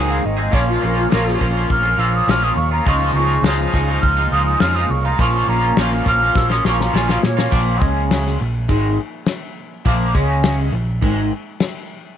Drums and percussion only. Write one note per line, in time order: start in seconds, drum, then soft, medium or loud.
0.53 kick loud
0.53 open hi-hat medium
1.12 snare loud
1.12 open hi-hat medium
1.28 snare soft
1.41 kick medium
1.70 kick loud
1.70 open hi-hat medium
2.29 snare loud
2.29 open hi-hat medium
2.87 kick loud
2.87 open hi-hat medium
3.44 snare loud
3.44 open hi-hat medium
3.74 kick medium
4.03 kick loud
4.03 open hi-hat medium
4.60 snare loud
4.60 open hi-hat medium
5.18 kick loud
5.18 open hi-hat medium
5.77 snare loud
5.77 open hi-hat medium
5.92 snare soft
6.06 kick medium
6.36 kick loud
6.36 snare medium
6.50 snare medium
6.65 snare medium
6.81 snare medium
6.96 snare medium
7.09 snare medium
7.23 snare loud
7.39 snare medium
7.52 kick loud
7.52 crash medium
7.82 kick loud
8.11 snare loud
8.11 crash medium
8.26 snare soft
8.69 kick loud
8.69 crash medium
9.26 snare loud
9.26 crash medium
9.85 kick loud
9.85 crash medium
10.15 kick loud
10.43 snare loud
10.43 crash medium
11.02 kick loud
11.02 crash medium
11.60 snare loud
11.60 crash medium